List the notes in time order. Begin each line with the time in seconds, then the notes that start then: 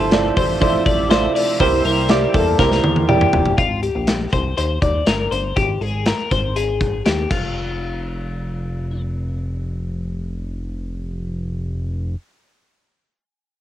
Already playing: C3 F3 A3 E4 F4 A4 C5 E5
0.00 G1
0.11 E4 F4 A4 D5, snare, hi-hat pedal, open hi-hat
0.37 A1 C5, kick, hi-hat pedal, open hi-hat
0.60 E4 F4 A4 C5 D5, kick, hi-hat pedal, open hi-hat
0.86 A1 D5, kick, hi-hat pedal, open hi-hat
1.09 E4 F4 A4 C5 D5, snare, hi-hat pedal, open hi-hat
1.35 D5, hi-hat pedal, open hi-hat
1.60 C2 G3 A#3 E4 G4 A#4 C5, kick, hi-hat pedal, open hi-hat
1.84 C2 A#4, hi-hat pedal, open hi-hat
2.09 E4 G4 A#4 D5, snare, hi-hat pedal, open hi-hat
2.34 E2 A4, kick, hi-hat pedal, open hi-hat
2.59 C2 E4 G4 A#4 C5, kick, snare
2.72 snare
2.83 E2, high tom
2.96 high tom
3.08 E4 G4 A#4 D5, mid tom
3.21 mid tom
3.33 F1, floor tom
3.46 floor tom
3.58 G#1 F4, kick, closed hi-hat
3.83 G4, closed hi-hat
3.95 A#1
4.07 snare, closed hi-hat
4.33 C2 C5, kick, closed hi-hat
4.57 D#2 C5, closed hi-hat
4.82 D#2 D5, kick, closed hi-hat
5.07 G1 A#4, snare, closed hi-hat
5.31 G1 C5, closed hi-hat
5.56 G#1 G4, kick, closed hi-hat
5.81 G#1 G#4, closed hi-hat
6.06 A#4, snare, closed hi-hat
6.31 G#1 C5, kick, closed hi-hat
6.56 G#4, closed hi-hat
6.81 kick, closed hi-hat
7.06 D#2 G4, snare, closed hi-hat
7.30 F1 F4, kick, crash